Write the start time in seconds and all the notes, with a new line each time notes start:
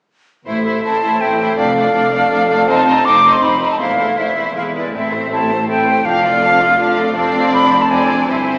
0.46 A1 A2 A3 E4 C5 E5
0.65 A3 E4 C5
0.84 A1 A2 A3 C4 E4 C5 A5
1.02 A3 E4 A4 C5
1.21 A1 A2 A3 C4 E4 C5 G5
1.39 E3 A3 E4 C5
1.57 F1 F2 A3 D4 D5 F5
1.76 A3 D4 D5
1.94 F1 F2 A3 D4 D5
2.13 A3 D4 A4 D5
2.31 F1 F2 A3 D4 D5
2.49 F3 A3 D4 D5
2.68 F1 F2 C4 D#4 C5 A5
2.86 C4 D#4 C5
3.04 F1 F2 C4 D#4 C5 D6
3.23 C4 D#4 C5
3.33 C6
3.42 F1 F2 C4 D#4 C5 B5
3.61 C3 C4 D#4 C5
3.71 A5
3.80 E1 E2 A3 E4 C5 F5
3.98 A3 C4 E4 C5
4.17 E1 E2 A3 E4 C5 E5
4.36 A3 E4 C5
4.55 E1 E2 G#3 E4 B4 F5
4.75 G#3 E4 G#4 B4 D5
4.93 A1 A2 C4 E4 A4 E5
5.12 A3 C4 C5
5.31 C4 E4 A4 A5
5.50 A3 C4 C5
5.68 C4 E4 A4 G5
5.87 E3 A3 C4 C5
6.04 F1 F2 F3 D4 F5
6.23 A3 F4 D5
6.42 F3 D4 F5
6.60 A3 F4 A4 D5
6.78 F3 D4 F5
6.97 F3 A3 F4 D5
7.16 F1 F2 C4 D4 D5 F5
7.34 C4
7.53 D4 B5
7.72 C5
7.82 A5
7.90 F2 C4 D4 D5 G#5
8.10 D4 G#4
8.29 G1 G2 C4 E4 C5 G#5
8.49 C4